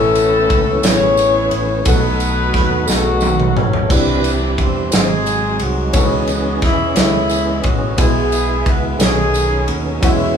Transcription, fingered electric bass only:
0, 0, Header, 1, 2, 480
1, 0, Start_track
1, 0, Tempo, 681044
1, 1307, Time_signature, 6, 3, 24, 8
1, 7309, End_track
2, 0, Start_track
2, 0, Title_t, "Fingered electric bass"
2, 0, Program_c, 0, 33
2, 0, Note_on_c, 0, 33, 105
2, 324, Note_off_c, 0, 33, 0
2, 354, Note_on_c, 0, 37, 94
2, 573, Note_off_c, 0, 37, 0
2, 593, Note_on_c, 0, 33, 91
2, 1042, Note_off_c, 0, 33, 0
2, 1068, Note_on_c, 0, 33, 74
2, 1288, Note_off_c, 0, 33, 0
2, 1308, Note_on_c, 0, 35, 102
2, 1759, Note_off_c, 0, 35, 0
2, 1789, Note_on_c, 0, 39, 84
2, 2008, Note_off_c, 0, 39, 0
2, 2032, Note_on_c, 0, 35, 90
2, 2480, Note_off_c, 0, 35, 0
2, 2513, Note_on_c, 0, 33, 82
2, 2730, Note_off_c, 0, 33, 0
2, 2749, Note_on_c, 0, 36, 101
2, 3198, Note_off_c, 0, 36, 0
2, 3227, Note_on_c, 0, 40, 94
2, 3446, Note_off_c, 0, 40, 0
2, 3477, Note_on_c, 0, 32, 102
2, 3922, Note_off_c, 0, 32, 0
2, 3947, Note_on_c, 0, 36, 86
2, 4166, Note_off_c, 0, 36, 0
2, 4184, Note_on_c, 0, 37, 105
2, 4636, Note_off_c, 0, 37, 0
2, 4667, Note_on_c, 0, 40, 85
2, 4886, Note_off_c, 0, 40, 0
2, 4904, Note_on_c, 0, 37, 105
2, 5356, Note_off_c, 0, 37, 0
2, 5390, Note_on_c, 0, 33, 88
2, 5608, Note_off_c, 0, 33, 0
2, 5624, Note_on_c, 0, 35, 100
2, 6077, Note_off_c, 0, 35, 0
2, 6104, Note_on_c, 0, 37, 94
2, 6327, Note_off_c, 0, 37, 0
2, 6341, Note_on_c, 0, 35, 105
2, 6798, Note_off_c, 0, 35, 0
2, 6823, Note_on_c, 0, 39, 86
2, 7047, Note_off_c, 0, 39, 0
2, 7067, Note_on_c, 0, 40, 102
2, 7309, Note_off_c, 0, 40, 0
2, 7309, End_track
0, 0, End_of_file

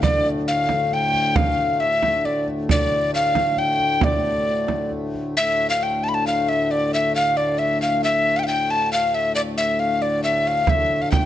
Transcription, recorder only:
0, 0, Header, 1, 2, 480
1, 0, Start_track
1, 0, Key_signature, -1, "minor"
1, 0, Tempo, 444115
1, 19, Time_signature, 3, 2, 24, 8
1, 12165, End_track
2, 0, Start_track
2, 0, Title_t, "Recorder"
2, 0, Program_c, 0, 74
2, 30, Note_on_c, 0, 74, 94
2, 298, Note_off_c, 0, 74, 0
2, 518, Note_on_c, 0, 77, 93
2, 1010, Note_on_c, 0, 79, 82
2, 1026, Note_off_c, 0, 77, 0
2, 1470, Note_on_c, 0, 77, 96
2, 1487, Note_off_c, 0, 79, 0
2, 1947, Note_on_c, 0, 76, 87
2, 1963, Note_off_c, 0, 77, 0
2, 2435, Note_on_c, 0, 74, 71
2, 2451, Note_off_c, 0, 76, 0
2, 2670, Note_off_c, 0, 74, 0
2, 2930, Note_on_c, 0, 74, 93
2, 3365, Note_off_c, 0, 74, 0
2, 3401, Note_on_c, 0, 77, 100
2, 3875, Note_on_c, 0, 79, 96
2, 3891, Note_off_c, 0, 77, 0
2, 4364, Note_on_c, 0, 74, 93
2, 4380, Note_off_c, 0, 79, 0
2, 5316, Note_off_c, 0, 74, 0
2, 5803, Note_on_c, 0, 76, 96
2, 6130, Note_off_c, 0, 76, 0
2, 6158, Note_on_c, 0, 77, 97
2, 6301, Note_on_c, 0, 79, 90
2, 6317, Note_off_c, 0, 77, 0
2, 6525, Note_on_c, 0, 81, 88
2, 6541, Note_off_c, 0, 79, 0
2, 6578, Note_on_c, 0, 83, 76
2, 6594, Note_off_c, 0, 81, 0
2, 6639, Note_on_c, 0, 81, 95
2, 6655, Note_off_c, 0, 83, 0
2, 6753, Note_off_c, 0, 81, 0
2, 6775, Note_on_c, 0, 77, 85
2, 7010, Note_on_c, 0, 76, 90
2, 7026, Note_off_c, 0, 77, 0
2, 7254, Note_on_c, 0, 74, 93
2, 7270, Note_off_c, 0, 76, 0
2, 7480, Note_off_c, 0, 74, 0
2, 7502, Note_on_c, 0, 76, 86
2, 7709, Note_off_c, 0, 76, 0
2, 7733, Note_on_c, 0, 77, 89
2, 7966, Note_on_c, 0, 74, 81
2, 7982, Note_off_c, 0, 77, 0
2, 8198, Note_on_c, 0, 76, 81
2, 8214, Note_off_c, 0, 74, 0
2, 8432, Note_off_c, 0, 76, 0
2, 8451, Note_on_c, 0, 77, 90
2, 8663, Note_off_c, 0, 77, 0
2, 8690, Note_on_c, 0, 76, 99
2, 9039, Note_on_c, 0, 77, 83
2, 9055, Note_off_c, 0, 76, 0
2, 9066, Note_on_c, 0, 79, 72
2, 9082, Note_off_c, 0, 77, 0
2, 9117, Note_on_c, 0, 77, 82
2, 9133, Note_off_c, 0, 79, 0
2, 9156, Note_off_c, 0, 77, 0
2, 9163, Note_on_c, 0, 79, 91
2, 9409, Note_on_c, 0, 81, 94
2, 9425, Note_off_c, 0, 79, 0
2, 9637, Note_off_c, 0, 81, 0
2, 9649, Note_on_c, 0, 77, 83
2, 9885, Note_on_c, 0, 76, 84
2, 9901, Note_off_c, 0, 77, 0
2, 10100, Note_off_c, 0, 76, 0
2, 10106, Note_on_c, 0, 74, 85
2, 10171, Note_off_c, 0, 74, 0
2, 10350, Note_on_c, 0, 76, 86
2, 10587, Note_on_c, 0, 77, 80
2, 10603, Note_off_c, 0, 76, 0
2, 10829, Note_on_c, 0, 74, 79
2, 10846, Note_off_c, 0, 77, 0
2, 11057, Note_off_c, 0, 74, 0
2, 11064, Note_on_c, 0, 76, 80
2, 11320, Note_on_c, 0, 77, 86
2, 11336, Note_off_c, 0, 76, 0
2, 11560, Note_on_c, 0, 76, 94
2, 11577, Note_off_c, 0, 77, 0
2, 11907, Note_on_c, 0, 77, 81
2, 11923, Note_off_c, 0, 76, 0
2, 12006, Note_off_c, 0, 77, 0
2, 12013, Note_on_c, 0, 79, 81
2, 12165, Note_off_c, 0, 79, 0
2, 12165, End_track
0, 0, End_of_file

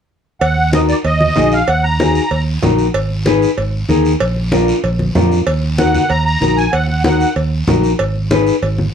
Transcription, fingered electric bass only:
0, 0, Header, 1, 2, 480
1, 0, Start_track
1, 0, Key_signature, -6, "minor"
1, 0, Tempo, 315956
1, 630, Time_signature, 4, 2, 24, 8
1, 13583, End_track
2, 0, Start_track
2, 0, Title_t, "Fingered electric bass"
2, 0, Program_c, 0, 33
2, 629, Note_on_c, 0, 39, 91
2, 1398, Note_off_c, 0, 39, 0
2, 1587, Note_on_c, 0, 39, 94
2, 1973, Note_off_c, 0, 39, 0
2, 2073, Note_on_c, 0, 34, 91
2, 2457, Note_off_c, 0, 34, 0
2, 2551, Note_on_c, 0, 39, 90
2, 3320, Note_off_c, 0, 39, 0
2, 3512, Note_on_c, 0, 39, 92
2, 3897, Note_off_c, 0, 39, 0
2, 3999, Note_on_c, 0, 34, 98
2, 4380, Note_off_c, 0, 34, 0
2, 4471, Note_on_c, 0, 32, 91
2, 5240, Note_off_c, 0, 32, 0
2, 5433, Note_on_c, 0, 32, 92
2, 5817, Note_off_c, 0, 32, 0
2, 5908, Note_on_c, 0, 39, 98
2, 6294, Note_off_c, 0, 39, 0
2, 6393, Note_on_c, 0, 34, 94
2, 7161, Note_off_c, 0, 34, 0
2, 7348, Note_on_c, 0, 34, 91
2, 7734, Note_off_c, 0, 34, 0
2, 7828, Note_on_c, 0, 41, 94
2, 8213, Note_off_c, 0, 41, 0
2, 8304, Note_on_c, 0, 39, 91
2, 9075, Note_off_c, 0, 39, 0
2, 9267, Note_on_c, 0, 39, 92
2, 9653, Note_off_c, 0, 39, 0
2, 9746, Note_on_c, 0, 34, 96
2, 10132, Note_off_c, 0, 34, 0
2, 10225, Note_on_c, 0, 39, 91
2, 10995, Note_off_c, 0, 39, 0
2, 11185, Note_on_c, 0, 39, 91
2, 11571, Note_off_c, 0, 39, 0
2, 11662, Note_on_c, 0, 34, 104
2, 12048, Note_off_c, 0, 34, 0
2, 12148, Note_on_c, 0, 32, 93
2, 12916, Note_off_c, 0, 32, 0
2, 13103, Note_on_c, 0, 32, 102
2, 13489, Note_off_c, 0, 32, 0
2, 13583, End_track
0, 0, End_of_file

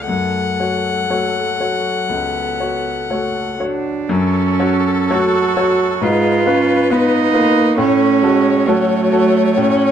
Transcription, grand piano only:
0, 0, Header, 1, 2, 480
1, 0, Start_track
1, 0, Key_signature, 3, "minor"
1, 0, Tempo, 1005025
1, 37, Time_signature, 4, 2, 24, 8
1, 2436, Tempo, 894188
1, 5020, End_track
2, 0, Start_track
2, 0, Title_t, "Grand piano"
2, 0, Program_c, 0, 0
2, 0, Control_c, 0, 64, 127
2, 0, Note_on_c, 0, 37, 42
2, 0, Note_on_c, 0, 68, 34
2, 0, Note_on_c, 0, 74, 33
2, 37, Note_on_c, 0, 42, 41
2, 46, Control_c, 0, 64, 0
2, 51, Note_off_c, 0, 37, 0
2, 51, Note_off_c, 0, 68, 0
2, 51, Note_off_c, 0, 74, 0
2, 131, Control_c, 0, 64, 127
2, 274, Note_off_c, 0, 42, 0
2, 284, Note_on_c, 0, 66, 29
2, 287, Note_on_c, 0, 73, 31
2, 504, Note_off_c, 0, 66, 0
2, 506, Note_off_c, 0, 73, 0
2, 524, Note_on_c, 0, 57, 30
2, 526, Note_on_c, 0, 66, 30
2, 528, Note_on_c, 0, 73, 34
2, 743, Note_off_c, 0, 57, 0
2, 744, Note_off_c, 0, 66, 0
2, 745, Note_off_c, 0, 73, 0
2, 764, Note_on_c, 0, 66, 28
2, 767, Note_on_c, 0, 73, 30
2, 983, Note_off_c, 0, 66, 0
2, 984, Note_off_c, 0, 73, 0
2, 1000, Note_on_c, 0, 37, 33
2, 1233, Note_off_c, 0, 37, 0
2, 1242, Note_on_c, 0, 66, 26
2, 1243, Note_on_c, 0, 73, 29
2, 1461, Note_off_c, 0, 66, 0
2, 1462, Note_off_c, 0, 73, 0
2, 1480, Note_on_c, 0, 66, 28
2, 1481, Note_on_c, 0, 57, 28
2, 1485, Note_on_c, 0, 73, 33
2, 1700, Note_off_c, 0, 57, 0
2, 1700, Note_off_c, 0, 66, 0
2, 1702, Note_off_c, 0, 73, 0
2, 1719, Note_on_c, 0, 66, 30
2, 1720, Note_on_c, 0, 73, 34
2, 1936, Note_off_c, 0, 66, 0
2, 1937, Note_off_c, 0, 73, 0
2, 1954, Note_on_c, 0, 42, 68
2, 1964, Control_c, 0, 64, 0
2, 2042, Control_c, 0, 64, 127
2, 2188, Note_off_c, 0, 42, 0
2, 2195, Note_on_c, 0, 73, 50
2, 2196, Note_on_c, 0, 66, 53
2, 2416, Note_off_c, 0, 73, 0
2, 2417, Note_off_c, 0, 66, 0
2, 2434, Note_on_c, 0, 57, 51
2, 2438, Note_on_c, 0, 66, 49
2, 2439, Note_on_c, 0, 73, 52
2, 2664, Note_off_c, 0, 57, 0
2, 2666, Note_off_c, 0, 66, 0
2, 2667, Note_off_c, 0, 73, 0
2, 2685, Note_on_c, 0, 66, 44
2, 2687, Note_on_c, 0, 73, 51
2, 2906, Note_off_c, 0, 66, 0
2, 2907, Note_off_c, 0, 73, 0
2, 2926, Note_on_c, 0, 44, 67
2, 2938, Control_c, 0, 64, 0
2, 3030, Control_c, 0, 64, 127
2, 3158, Note_off_c, 0, 44, 0
2, 3164, Note_on_c, 0, 65, 44
2, 3169, Note_on_c, 0, 71, 49
2, 3379, Note_off_c, 0, 65, 0
2, 3381, Note_off_c, 0, 71, 0
2, 3404, Note_on_c, 0, 59, 51
2, 3406, Note_on_c, 0, 65, 51
2, 3409, Note_on_c, 0, 71, 55
2, 3617, Note_off_c, 0, 59, 0
2, 3618, Note_off_c, 0, 65, 0
2, 3619, Note_off_c, 0, 71, 0
2, 3638, Note_on_c, 0, 65, 50
2, 3642, Note_on_c, 0, 71, 57
2, 3852, Note_off_c, 0, 65, 0
2, 3854, Note_off_c, 0, 71, 0
2, 3873, Note_on_c, 0, 45, 70
2, 3884, Control_c, 0, 64, 0
2, 3985, Control_c, 0, 64, 127
2, 4104, Note_off_c, 0, 45, 0
2, 4116, Note_on_c, 0, 66, 51
2, 4118, Note_on_c, 0, 69, 54
2, 4334, Note_off_c, 0, 66, 0
2, 4336, Note_off_c, 0, 69, 0
2, 4355, Note_on_c, 0, 61, 46
2, 4359, Note_on_c, 0, 66, 54
2, 4360, Note_on_c, 0, 69, 57
2, 4577, Note_off_c, 0, 61, 0
2, 4579, Note_off_c, 0, 66, 0
2, 4580, Note_off_c, 0, 69, 0
2, 4594, Note_on_c, 0, 66, 52
2, 4597, Note_on_c, 0, 69, 51
2, 4815, Note_off_c, 0, 66, 0
2, 4816, Note_off_c, 0, 69, 0
2, 4836, Note_on_c, 0, 45, 61
2, 5020, Note_off_c, 0, 45, 0
2, 5020, End_track
0, 0, End_of_file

